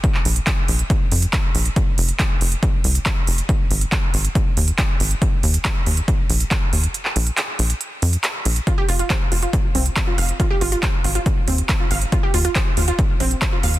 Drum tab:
HH |x-oxx-oxx-oxx-ox|x-oxx-oxx-oxx-ox|x-oxx-oxx-oxx-ox|x-oxx-oxx-oxx-ox|
CP |-x--x-------x---|----x-------x---|----x-------x---|----x-------x---|
BD |o---o---o---o---|o---o---o---o---|o---o---o---o---|o---o---o---o---|

HH |x-oxx-oxx-oxx-ox|x-oxx-oxx-oxx-ox|x-oxx-oxx-oxx-ox|x-oxx-oxx-oxx-ox|
CP |-x--x-------x---|----x-------x---|----x-------x---|----x-------x---|
BD |----------------|o---o---o---o---|o---o---o---o---|o---o---o---o---|